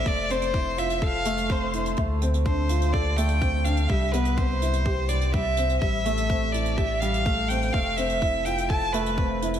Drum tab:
HH |x-xxx-xxx-xxx-xx|x-xxx-xxx-xxx-xx|x-xxx-xxx-xxx-xx|x-xxx-xxx-xxx-xx|
BD |o---o---o---o---|o---o---o---o---|o---o---o---o---|o---o---o---o---|

HH |x-xxx-xxx-xxx-xx|
BD |o---o---o---o---|